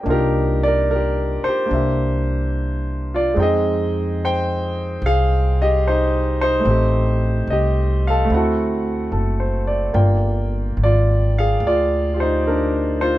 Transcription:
Already playing: D#5 G5
0.03 C2 A#3 D4 D#4
0.08 F4 G4 A#4
0.63 D5
0.68 A#4
0.91 A#4
0.95 G4
1.44 C5
1.49 G4
1.66 A#3 D4
1.71 C2 E5
1.76 G4
3.14 F4 D5
3.34 F2 G#3 C4 D#4
3.40 G#4 D#5 G5
4.25 C5 G5
5.02 C2
5.06 G#4 F5
5.62 G4 D#5
5.87 D#4 C5
6.41 D#4 C5
6.59 A3 C4
6.65 A1 D#4
6.70 G4
7.47 C2 D#5
7.53 G4
8.07 A4 F5
8.25 A3 C4
8.30 D2 E4
8.34 F#4 A4 F#5
9.12 F#1 A4
9.40 C5
9.67 D5
9.94 G1 A#3 F4 D5 G5
10.77 G#1
10.84 F4 D5
11.38 G#4 F5
11.60 D2
11.67 F4 D5
12.14 F4 G4
12.20 D#4 C5
12.47 D4 A#4
13.01 F4 C5

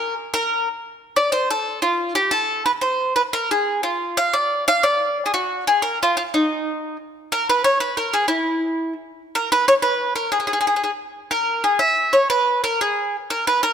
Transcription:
Already playing: A#4
0.34 A#4
1.16 D5
1.32 C5
1.51 A4
1.82 F4
2.15 G4
2.31 A4
2.66 B4
2.81 C5
3.16 B4
3.33 A#4
3.51 G#4
3.83 F4
4.17 F5
4.33 D5
4.68 F5
4.83 D5
5.26 G#4
5.34 F#4
5.67 G#4
5.82 A#4
6.03 F4
6.17 F4
6.34 D#4
7.32 A#4
7.49 B4
7.64 C#5
7.80 B4
7.97 A#4
8.14 G#4
8.28 E4
9.35 A#4
9.52 B4
9.68 C#5
9.82 B4
10.16 A#4
10.32 G#4
10.40 G#4
10.47 G#4
10.53 G#4
10.61 G#4
10.67 G#4
10.76 G#4
10.84 G#4
11.31 A#4
11.64 G#4
11.79 E5
12.13 C#5
12.30 B4
12.64 A#4
12.81 G#4
13.30 A#4
13.47 B4
13.63 A#4

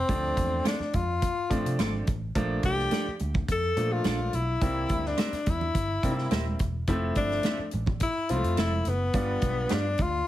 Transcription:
Already playing: C4
0.09 D2 F3 A3 C4 D4, kick, closed hi-hat, muted conga
0.37 E2, kick, closed hi-hat, muted conga
0.65 C4 D4 F4 A4 D5, snare, closed hi-hat, high conga
0.80 muted picked electric bass stroke, snare
0.93 F2 F4, kick, closed hi-hat, muted conga
1.22 kick, closed hi-hat
1.50 A2 F3 A3 C4 D4, kick, closed hi-hat, muted conga
1.65 C3, closed hi-hat
1.79 G#1 C4 F4 A4 D5, snare, closed hi-hat, high conga
1.93 high conga
2.07 A1, kick, closed hi-hat
2.35 A#1 F3 A3 A#3 D4, kick, closed hi-hat, muted conga
2.63 C2 G4, kick, closed hi-hat, muted conga
2.79 snare
2.91 D4 F4 A4 D5, snare, closed hi-hat, high conga
3.08 muted picked electric bass stroke
3.19 D2, closed hi-hat, muted conga
3.34 kick, low conga
3.48 F2 A4, kick, closed hi-hat
3.77 A#2 F3 A3 A#3 D4, closed hi-hat, muted conga
3.93 F4
4.04 A#1 D4 F4 A4 D5, snare, closed hi-hat, high conga
4.19 high conga
4.33 B1 E4, closed hi-hat
4.61 C2 G3 A#3 C4 E4, kick, closed hi-hat, muted conga
4.89 D2, kick, closed hi-hat, muted conga
5.05 D4, snare
5.17 C4 G4 A#4 E5, snare, closed hi-hat, high conga
5.33 muted picked electric bass stroke, snare, closed hi-hat
5.46 E2 E4, kick, closed hi-hat, muted conga
5.61 low conga
5.74 G1, kick, closed hi-hat
6.03 C3 G3 A#3 C4 D4, kick, closed hi-hat
6.11 E4
6.18 snare
6.31 D#1 C4 G4 A#4 E5, snare, closed hi-hat, high conga
6.48 high conga
6.59 E1, kick, closed hi-hat
6.87 F1 F3 A3 C4 E4, kick, closed hi-hat, muted conga
7.15 G1 D4, kick, closed hi-hat, muted conga
7.31 snare
7.43 C4 F4 A4 E5, snare, closed hi-hat, high conga
7.59 muted picked electric bass stroke
7.71 A1, closed hi-hat, muted conga
7.86 kick, low conga
8.00 E4, kick, closed hi-hat
8.29 C2 F3 G3 C4 E4 F4, closed hi-hat
8.36 A3
8.44 F2, closed hi-hat
8.57 F1 C4 E4 F4 A4 E5, snare, closed hi-hat, high conga
8.72 high conga
8.85 F#1, closed hi-hat
8.89 B3
9.13 G1 G3 B3 D4 F4, kick, closed hi-hat, muted conga
9.41 B1, kick, closed hi-hat, muted conga
9.69 G2 D4 G4 B4 F5, snare, closed hi-hat, high conga
9.74 D4
9.98 D2, kick, closed hi-hat, muted conga
10.02 F4

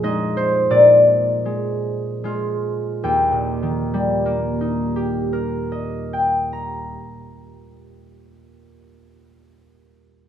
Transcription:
Already playing: A#2 F3 F4 F5
0.03 G#3 D#4 D#5
0.37 C5
0.70 A#2 D5
1.45 G#3
2.24 G#3 F4
3.03 D#2 G5
3.32 A#2
3.63 D#3
3.94 G3
4.26 A#3
4.61 D#4
4.96 G4
5.33 A#4
5.72 D#5
6.13 G5
6.53 A#5

